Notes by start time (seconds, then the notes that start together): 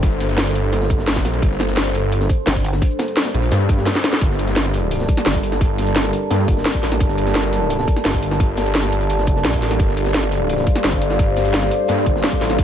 Already playing: G3 D4 A4 C5
0.03 G1, kick, closed hi-hat
0.12 cabasa
0.20 snare, closed hi-hat, cabasa
0.29 snare, closed hi-hat
0.37 snare, closed hi-hat
0.47 snare, cabasa
0.55 closed hi-hat, cabasa
0.72 snare, closed hi-hat
0.81 snare, cabasa
0.89 G1, kick, closed hi-hat, cabasa
0.98 snare
1.08 snare, closed hi-hat
1.16 kick, snare, cabasa
1.25 A#1, snare, closed hi-hat, open hi-hat, cabasa
1.34 snare, closed hi-hat
1.42 G1, kick, closed hi-hat
1.51 snare
1.59 snare, closed hi-hat, cabasa
1.68 snare, closed hi-hat
1.77 snare, closed hi-hat
1.86 snare, cabasa
1.94 snare, closed hi-hat, cabasa
2.12 closed hi-hat
2.20 snare, cabasa
2.29 kick, closed hi-hat, cabasa
2.46 G1, snare, closed hi-hat
2.56 kick, snare, cabasa
2.64 closed hi-hat, open hi-hat, cabasa
2.73 snare
2.82 kick, closed hi-hat
2.91 cabasa
2.99 snare, closed hi-hat, cabasa
3.08 closed hi-hat
3.17 snare, closed hi-hat
3.25 snare, closed hi-hat, cabasa
3.34 A#1, closed hi-hat, cabasa
3.43 closed hi-hat
3.51 G2, snare, closed hi-hat
3.60 cabasa
3.69 kick, closed hi-hat, cabasa
3.78 snare
3.86 snare, closed hi-hat
3.95 snare, closed hi-hat, cabasa
4.04 snare, closed hi-hat, open hi-hat, cabasa
4.13 snare, closed hi-hat
4.21 G1 G3 D4 G4 A4 A#4, kick, closed hi-hat
4.30 snare
4.39 closed hi-hat, cabasa
4.43 D5
4.48 snare, closed hi-hat
4.55 A5, snare, closed hi-hat
4.65 snare, cabasa
4.74 snare, closed hi-hat, open hi-hat, cabasa
4.91 closed hi-hat
5.00 snare, cabasa
5.08 kick, closed hi-hat, cabasa
5.17 snare
5.25 G1, snare, closed hi-hat
5.35 kick, snare, closed hi-hat, cabasa
5.43 closed hi-hat, open hi-hat, cabasa
5.52 snare
5.61 kick, closed hi-hat
5.78 snare, closed hi-hat, cabasa
5.87 snare, closed hi-hat
5.95 snare, closed hi-hat
6.04 snare, cabasa
6.13 closed hi-hat, open hi-hat, cabasa
6.31 G2, snare, closed hi-hat
6.39 snare, cabasa
6.48 G1, kick, closed hi-hat, cabasa
6.57 snare
6.65 snare, closed hi-hat
6.74 kick, closed hi-hat, cabasa
6.83 A1, snare, closed hi-hat, open hi-hat, cabasa
6.92 snare, closed hi-hat
7.00 G1, kick, closed hi-hat
7.08 snare
7.18 closed hi-hat, cabasa
7.27 snare, closed hi-hat
7.35 snare, closed hi-hat
7.44 snare, cabasa
7.52 snare, closed hi-hat, open hi-hat, cabasa
7.70 closed hi-hat
7.79 snare, cabasa
7.88 kick, closed hi-hat, cabasa
7.96 snare
8.05 G1, snare, closed hi-hat
8.14 kick, snare, closed hi-hat, cabasa
8.23 closed hi-hat, open hi-hat, cabasa
8.31 snare
8.40 kick, closed hi-hat
8.57 snare, closed hi-hat, cabasa
8.66 snare, closed hi-hat
8.75 snare, closed hi-hat
8.83 snare, closed hi-hat, cabasa
8.92 G1, open hi-hat, cabasa
9.00 closed hi-hat
9.10 closed hi-hat
9.18 snare, cabasa
9.26 kick, closed hi-hat, cabasa
9.36 snare
9.45 A#1, snare, closed hi-hat
9.53 kick, snare, closed hi-hat, cabasa
9.62 A1, snare, closed hi-hat, open hi-hat, cabasa
9.71 snare, closed hi-hat
9.79 G1 C5, kick, closed hi-hat
9.88 snare
9.97 closed hi-hat, cabasa
10.06 snare, closed hi-hat
10.13 F5, snare, closed hi-hat
10.23 snare, cabasa
10.31 snare, closed hi-hat, open hi-hat, cabasa
10.49 closed hi-hat
10.58 snare, cabasa
10.67 kick, closed hi-hat, cabasa
10.76 snare
10.84 G1, snare, closed hi-hat
10.92 kick, snare, closed hi-hat, cabasa
11.02 closed hi-hat, open hi-hat, cabasa
11.10 snare
11.19 kick, closed hi-hat
11.37 snare, closed hi-hat, cabasa
11.45 snare, closed hi-hat
11.53 snare, closed hi-hat
11.63 snare, cabasa
11.71 closed hi-hat, open hi-hat, cabasa
11.88 G2, snare, closed hi-hat
11.97 snare, cabasa
12.06 G1, kick, closed hi-hat, cabasa
12.16 snare
12.23 snare, closed hi-hat
12.32 kick, closed hi-hat, cabasa
12.41 A1, snare, closed hi-hat, open hi-hat, cabasa
12.50 snare
12.58 G1, kick, closed hi-hat